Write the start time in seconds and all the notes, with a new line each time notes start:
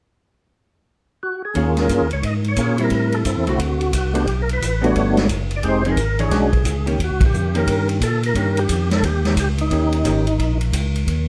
1.23 F#4
1.45 G#4
1.54 D#2 D#3 A#3 C#4 F4 G#4, kick, ride
1.77 A#4, snare, ride
1.89 G2, kick, hi-hat pedal, ride
2.01 D#2
2.11 C#2 C#5, ride
2.22 G#2 D#5, kick, ride
2.44 ride
2.48 C#5
2.56 A#2 A#3 C#4 F4 G#4, kick, hi-hat pedal, ride
2.78 G3 C4 E4, ride
2.84 A#4
2.90 A2, kick, ride
2.95 A#4
3.12 A4, ride
3.25 G2 C4 E4, kick, hi-hat pedal, ride
3.37 E2
3.47 C2 D3 A3 C4 F#4, ride
3.59 D2, kick, ride
3.81 ride
3.92 C2 F#4, kick, hi-hat pedal, ride
4.14 A3 B3 D4 F#4 G4, ride
4.26 B1, kick, ride
4.42 A#4
4.49 B4, ride
4.61 A1, kick, hi-hat pedal, ride
4.81 G3 A3 B3 D4 F#4, ride
4.86 C#5
4.95 G1, kick, ride
5.17 snare, ride
5.29 F#1, kick, hi-hat pedal, ride
5.51 ride
5.56 D5
5.63 F1 G#3 C4 D#4 G4, kick, ride
5.69 C5
5.85 F3 C4 D#4 G#4, ride
5.91 A#4
5.97 G#1, kick, hi-hat pedal, ride
6.19 E3 D4 G#4 C#5, ride
6.25 G#4
6.31 B1 G#3 C#4 D4 F#4, kick, snare, ride
6.53 kick, ride
6.65 C#2, kick, hi-hat pedal, ride
6.86 D#3 A#3 C#4 G4, ride
6.99 D#2, kick, ride
7.04 F#4
7.11 C#2
7.21 A#1, kick, ride
7.26 G4
7.33 F2, hi-hat pedal
7.55 D#3 A#3 C#4 G4 A#4, ride
7.66 G2, kick, ride
7.89 ride
8.00 A#2 A4, kick, hi-hat pedal, ride
8.23 A#4, ride
8.34 G2 D#3 A#3 C#4 G4, kick, ride
8.57 G4, ride
8.69 F2, kick, hi-hat pedal, ride
8.91 A4, snare, ride
9.02 D#2 G4, kick, ride
9.25 snare, ride
9.36 C#2 G4, kick, hi-hat pedal, ride
9.58 D#4, ride
9.71 D#2 D#3 A#3 C#4 G4, kick, ride
9.92 ride
10.05 G#1 D#3 A#3 C#4 G4, kick, hi-hat pedal, ride
10.27 ride
10.39 A#1, kick, ride
10.61 ride
10.73 C#2, kick, hi-hat pedal, ride
10.96 ride
11.07 D#2, kick, ride